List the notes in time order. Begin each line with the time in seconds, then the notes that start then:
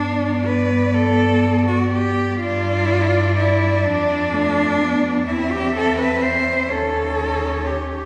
Already playing: G2 B3 D4 D5
0.46 B4
0.95 A4
1.68 F#4
1.92 G4
2.40 G2 D4 F4 D5
3.37 E4
3.85 F2 D4
4.33 A3
4.81 B3
5.26 E2 C4 E4 E5
5.52 G4
5.76 A4
5.99 B4
6.23 C5
6.69 D#2 C#4 A4 C#5
7.67 G4